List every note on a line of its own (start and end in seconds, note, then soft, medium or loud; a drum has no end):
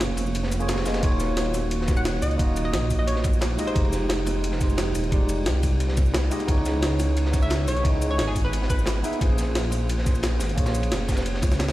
0.00 0.85 F1 loud
0.00 0.59 A#3 loud
0.00 0.60 C#4 medium
0.00 0.61 F4 medium
0.00 0.61 G#4 medium
0.00 1.05 C5 loud
0.00 0.51 C#5 loud
0.00 snare loud
0.00 closed hi-hat loud
0.00 ride medium
0.17 open hi-hat medium
0.17 ride medium
0.17 high bongo medium
0.17 cabasa medium
0.27 cabasa soft
0.35 closed hi-hat medium
0.35 ride medium
0.43 snare medium
0.51 closed hi-hat medium
0.51 ride medium
0.51 high bongo medium
0.51 cabasa medium
0.59 0.83 A#3 medium
0.59 0.84 C#4 medium
0.59 0.84 F4 medium
0.59 0.84 G#4 medium
0.59 0.85 C#5 loud
0.59 cabasa soft
0.68 snare loud
0.68 closed hi-hat medium
0.68 ride medium
0.68 high bongo medium
0.77 snare loud
0.77 ride medium
0.85 1.01 F1 medium
0.85 1.00 A#3 medium
0.85 1.01 C#4 medium
0.85 1.01 F4 medium
0.85 1.01 G#4 medium
0.85 1.02 D#5 medium
0.85 snare loud
0.85 open hi-hat medium
0.85 ride medium
0.85 cabasa medium
0.94 snare loud
0.94 closed hi-hat soft
0.94 ride medium
1.01 2.21 D#1 loud
1.01 1.85 A#3 medium
1.01 1.86 D#4 medium
1.01 1.86 F4 medium
1.01 1.87 F#4 medium
1.01 kick loud
1.01 closed hi-hat loud
1.01 ride medium
1.06 1.88 C#5 loud
1.12 ride soft
1.20 snare soft
1.20 closed hi-hat medium
1.20 ride medium
1.20 cabasa medium
1.37 snare loud
1.37 closed hi-hat loud
1.37 ride medium
1.46 ride soft
1.54 open hi-hat medium
1.54 ride medium
1.54 high bongo medium
1.54 cabasa medium
1.71 closed hi-hat loud
1.71 ride medium
1.81 snare soft
1.86 2.36 A#3 medium
1.86 2.37 D#4 medium
1.86 2.37 F4 medium
1.86 2.38 F#4 medium
1.86 kick loud
1.86 snare soft
1.86 closed hi-hat medium
1.86 ride medium
1.86 cabasa medium
1.91 2.39 C#5 medium
1.97 2.17 F#5 medium
1.97 cabasa soft
2.05 snare loud
2.05 closed hi-hat medium
2.05 ride medium
2.22 2.38 C#2 loud
2.22 2.43 D#5 medium
2.22 open hi-hat medium
2.22 ride medium
2.22 cabasa medium
2.31 closed hi-hat soft
2.37 2.75 D#1 loud
2.37 3.21 A#3 medium
2.37 3.22 D#4 medium
2.37 3.23 F4 medium
2.37 3.23 F#4 medium
2.37 kick loud
2.37 closed hi-hat loud
2.37 ride medium
2.42 3.24 D#5 loud
2.56 closed hi-hat medium
2.56 ride medium
2.56 cabasa medium
2.65 2.70 D#5 medium
2.73 3.57 A#1 loud
2.73 2.79 D#5 medium
2.73 snare loud
2.73 closed hi-hat loud
2.73 ride medium
2.90 kick medium
2.90 open hi-hat medium
2.90 ride medium
2.90 cabasa medium
2.99 3.06 D#5 medium
3.07 3.55 C#5 medium
3.07 closed hi-hat loud
3.07 ride medium
3.16 snare soft
3.24 kick loud
3.24 closed hi-hat medium
3.24 ride medium
3.24 high bongo medium
3.24 cabasa medium
3.33 cabasa soft
3.41 snare loud
3.41 closed hi-hat loud
3.41 ride medium
3.41 high bongo medium
3.50 ride soft
3.58 3.72 G#3 loud
3.58 3.73 D#4 medium
3.58 3.74 F4 medium
3.58 3.74 G4 medium
3.58 3.74 D#5 loud
3.58 open hi-hat medium
3.58 ride medium
3.58 cabasa medium
3.67 4.01 C5 loud
3.67 closed hi-hat soft
3.73 4.94 F1 loud
3.73 4.57 G#3 loud
3.73 4.58 D#4 medium
3.73 4.59 F4 medium
3.73 4.60 G4 medium
3.73 kick loud
3.73 closed hi-hat medium
3.73 ride loud
3.78 4.60 C5 loud
3.85 ride soft
3.92 snare soft
3.92 closed hi-hat medium
3.92 ride medium
3.92 cabasa medium
4.09 snare loud
4.09 closed hi-hat loud
4.09 ride medium
4.18 ride soft
4.26 open hi-hat medium
4.26 ride medium
4.26 high bongo medium
4.26 cabasa medium
4.44 closed hi-hat loud
4.44 ride medium
4.52 snare soft
4.59 5.09 G#3 medium
4.59 5.09 D#4 medium
4.59 5.10 F4 medium
4.59 5.11 G4 medium
4.59 kick loud
4.59 snare medium
4.59 closed hi-hat medium
4.59 ride medium
4.59 cabasa medium
4.63 5.11 C5 medium
4.70 cabasa soft
4.78 snare loud
4.78 closed hi-hat loud
4.78 ride medium
4.95 5.10 D#1 loud
4.95 open hi-hat medium
4.95 ride medium
4.95 cabasa medium
5.04 closed hi-hat soft
5.10 5.48 F1 loud
5.10 5.94 G#3 medium
5.10 5.95 D#4 medium
5.10 5.95 F4 medium
5.10 5.96 G4 medium
5.10 kick loud
5.10 closed hi-hat medium
5.10 ride medium
5.14 5.96 D5 loud
5.29 closed hi-hat medium
5.29 ride medium
5.29 cabasa medium
5.46 6.30 C2 loud
5.46 snare loud
5.46 closed hi-hat medium
5.46 ride medium
5.63 kick medium
5.63 open hi-hat medium
5.63 ride medium
5.63 cabasa medium
5.80 closed hi-hat medium
5.80 ride medium
5.88 snare medium
5.97 kick loud
5.97 closed hi-hat medium
5.97 ride medium
5.97 high bongo medium
5.97 cabasa medium
6.06 cabasa soft
6.14 snare loud
6.14 closed hi-hat medium
6.14 ride medium
6.14 high bongo medium
6.24 ride soft
6.30 6.46 G#3 medium
6.30 6.46 D#4 medium
6.30 6.46 F4 medium
6.30 6.47 G4 medium
6.30 6.47 D#5 loud
6.30 open hi-hat medium
6.30 ride medium
6.30 cabasa medium
6.40 closed hi-hat soft
6.40 high bongo medium
6.46 7.66 C#2 loud
6.46 7.30 B3 loud
6.46 7.31 D#4 medium
6.46 7.32 E4 medium
6.46 7.32 G#4 medium
6.46 kick loud
6.46 closed hi-hat medium
6.46 ride medium
6.51 7.33 C#5 loud
6.57 ride soft
6.66 snare soft
6.66 closed hi-hat medium
6.66 ride medium
6.66 cabasa medium
6.82 snare loud
6.82 closed hi-hat medium
6.82 ride medium
6.92 ride soft
7.00 open hi-hat medium
7.00 ride medium
7.00 high bongo medium
7.00 cabasa medium
7.17 closed hi-hat medium
7.17 ride medium
7.25 snare soft
7.31 7.81 B3 medium
7.31 7.82 D#4 medium
7.31 7.83 E4 medium
7.31 7.83 G#4 medium
7.31 kick loud
7.31 snare soft
7.31 closed hi-hat medium
7.31 ride medium
7.31 cabasa medium
7.36 7.84 C#5 medium
7.42 7.63 E5 medium
7.42 cabasa soft
7.50 snare loud
7.50 closed hi-hat medium
7.50 ride loud
7.68 7.83 B1 loud
7.68 7.88 C#5 loud
7.68 open hi-hat medium
7.68 ride medium
7.68 cabasa medium
7.77 closed hi-hat soft
7.82 8.20 C#2 loud
7.82 8.67 B3 medium
7.82 8.67 D#4 medium
7.82 8.68 E4 medium
7.82 8.69 G#4 medium
7.82 kick loud
7.82 closed hi-hat medium
7.82 ride medium
7.87 8.69 D#5 loud
8.02 closed hi-hat medium
8.02 ride medium
8.02 cabasa medium
8.11 8.16 C#5 medium
8.18 9.03 G#1 medium
8.18 8.25 C#5 medium
8.18 snare loud
8.18 closed hi-hat medium
8.18 ride loud
8.28 8.43 G#4 medium
8.35 kick medium
8.35 open hi-hat medium
8.35 ride medium
8.35 cabasa medium
8.45 8.65 B4 medium
8.53 closed hi-hat medium
8.53 ride medium
8.62 snare soft
8.70 9.04 B4 medium
8.70 kick loud
8.70 closed hi-hat medium
8.70 ride medium
8.70 high bongo medium
8.70 cabasa medium
8.79 cabasa soft
8.86 snare loud
8.86 ride medium
8.86 high bongo medium
8.87 snare loud
8.87 closed hi-hat medium
8.95 ride soft
9.03 9.19 B3 loud
9.03 9.19 D#4 medium
9.03 9.19 E4 medium
9.03 9.19 G#4 medium
9.03 9.20 E5 loud
9.03 open hi-hat medium
9.03 ride medium
9.03 cabasa medium
9.13 closed hi-hat soft
9.19 10.39 A#1 loud
9.19 10.03 A#3 loud
9.19 10.04 C#4 medium
9.19 10.04 F4 medium
9.19 10.05 G#4 medium
9.19 kick loud
9.19 closed hi-hat medium
9.19 ride loud
9.23 10.06 C5 loud
9.30 ride soft
9.38 snare soft
9.38 closed hi-hat medium
9.38 ride medium
9.38 cabasa medium
9.55 snare loud
9.55 closed hi-hat medium
9.55 ride medium
9.64 ride soft
9.71 open hi-hat medium
9.71 ride medium
9.71 high bongo medium
9.71 cabasa medium
9.89 closed hi-hat medium
9.89 ride medium
9.98 snare soft
10.04 10.54 A#3 medium
10.04 10.55 C#4 medium
10.04 10.56 F4 medium
10.04 10.56 G#4 medium
10.04 kick loud
10.04 snare soft
10.04 closed hi-hat medium
10.04 ride medium
10.04 cabasa medium
10.09 10.57 C5 medium
10.15 cabasa soft
10.23 snare loud
10.23 closed hi-hat medium
10.23 ride medium
10.40 10.56 G#1 loud
10.40 snare loud
10.40 open hi-hat medium
10.40 ride medium
10.40 cabasa medium
10.49 closed hi-hat soft
10.55 10.93 A#1 loud
10.55 11.40 A#3 medium
10.55 11.40 C#4 medium
10.55 11.41 F4 medium
10.55 11.41 G#4 medium
10.55 kick loud
10.55 closed hi-hat loud
10.55 ride medium
10.60 11.42 C#5 loud
10.66 snare loud
10.66 ride medium
10.66 cabasa soft
10.75 closed hi-hat medium
10.75 cabasa medium
10.83 closed hi-hat soft
10.83 ride medium
10.92 11.42 F1 loud
10.92 snare loud
10.92 closed hi-hat loud
10.92 ride medium
11.08 kick medium
11.08 snare loud
11.08 open hi-hat medium
11.08 ride medium
11.08 high bongo medium
11.08 cabasa medium
11.12 snare medium
11.12 ride medium
11.16 snare loud
11.16 ride medium
11.16 cabasa soft
11.26 closed hi-hat loud
11.26 ride medium
11.34 snare medium
11.42 11.72 C#2 loud
11.42 kick loud
11.42 snare medium
11.42 closed hi-hat medium
11.42 ride medium
11.42 high bongo medium
11.42 cabasa medium
11.52 snare medium
11.52 snare soft
11.52 cabasa soft
11.59 snare loud
11.59 snare medium
11.59 closed hi-hat loud
11.59 ride medium
11.59 high bongo medium
11.68 snare medium
11.68 ride medium